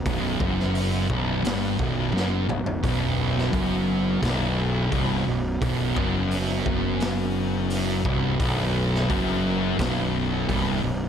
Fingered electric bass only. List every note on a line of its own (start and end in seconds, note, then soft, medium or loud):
0.06 0.38 B0 medium
0.40 1.06 F#1 loud
1.10 1.42 B0 medium
1.45 1.77 G1 medium
1.79 2.12 B0 loud
2.15 2.47 F#1 medium
2.50 2.82 B0 medium
2.83 3.49 B0 medium
3.53 4.19 F#1 medium
4.22 4.88 B0 medium
4.92 5.24 C1 medium
5.27 5.60 B0 medium
5.62 5.94 B0 medium
5.96 6.62 F#1 loud
6.66 8.01 F#1 medium
8.05 8.38 C1 loud
8.40 9.06 B0 medium
9.10 9.76 F#1 medium
9.79 10.45 B0 loud
10.49 10.81 C1 medium
10.83 11.09 B0 medium